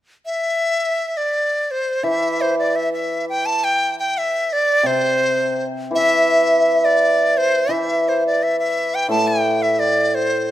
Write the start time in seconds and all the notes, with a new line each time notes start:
0.26 E5
1.17 D5
1.71 C5
2.03 E3 E5
2.41 C5
2.59 D5
2.76 E5
2.93 E5
3.29 G5
3.46 A5
3.64 G5
3.99 G5
4.18 E5
4.53 D5
4.83 C3 C5
5.91 E3
5.95 E5
6.85 D5
7.37 C5
7.69 E3 E5
8.09 C5
8.27 D5
8.43 E5
8.59 E5
8.95 G5
9.09 A2 A5
9.28 G5
9.62 E5
9.79 D5
10.15 C5